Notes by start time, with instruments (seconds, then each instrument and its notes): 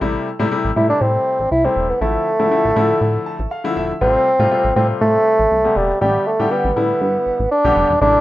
0.01 analog synth bass A1, grand piano C3 G3 A3 E4
0.39 analog synth bass A2, grand piano C3 G3 A3 E4
0.51 grand piano C3 G3 A3 E4
0.65 analog synth bass A1
0.76 analog synth bass A2, grand piano C3 G3 A3 E4, bassoon E4
0.89 bassoon D4
1.01 analog synth bass A2, bassoon C4
1.39 analog synth bass A1
1.51 analog synth bass C2, bassoon E4
1.64 grand piano C3 G3 A3 E4, bassoon C4
1.76 analog synth bass E1
1.90 bassoon B3
2.01 analog synth bass A1, grand piano D3 F3 A3 E4, bassoon A3
2.39 analog synth bass A2, grand piano D3 F3 A3 E4
2.51 grand piano D3 F3 A3 E4
2.64 analog synth bass A1
2.76 analog synth bass A2, grand piano D3 F3 A3 E4
3.01 analog synth bass A2
3.26 grand piano A5
3.39 analog synth bass A1
3.51 grand piano F5
3.64 grand piano D3 F3 A3 E4
3.76 analog synth bass E1, grand piano E5
4.01 analog synth bass A1, grand piano C3 G3 A3 F4, bassoon C4
4.39 analog synth bass A2, grand piano C3 G3 A3 F4
4.51 grand piano C3 G3 A3 F4
4.64 analog synth bass A1
4.76 analog synth bass A2, grand piano C3 G3 A3 F4, bassoon C4
5.01 analog synth bass A2, bassoon A3
5.39 analog synth bass A1
5.51 analog synth bass C2
5.64 grand piano C3 G3 A3 B3
5.76 analog synth bass E1, bassoon G3
6.01 analog synth bass A1, grand piano D3 G3 B3 G4, bassoon G3
6.26 bassoon A3
6.39 analog synth bass A2, grand piano D3 G3 B3 G4
6.51 grand piano D3 G3 B3 G4, bassoon B3
6.65 analog synth bass A1
6.76 analog synth bass A2, grand piano D3 G3 B3 E4
7.01 analog synth bass G2
7.26 analog synth bass A1
7.40 analog synth bass A1
7.51 bassoon D4
7.64 analog synth bass B1, grand piano D3 G3 B3 G4
7.76 analog synth bass F1
7.90 analog synth bass E1
8.01 analog synth bass A1, grand piano C3 G3 A3 E4, bassoon D4